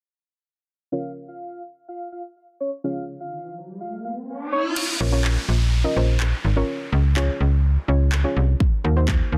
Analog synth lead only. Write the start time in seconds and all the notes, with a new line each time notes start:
0.92 F5
1.28 F5
1.88 F5
2.12 F5
2.60 C#5
2.84 F5
3.20 F5
3.80 F5
4.05 F5
4.52 C#5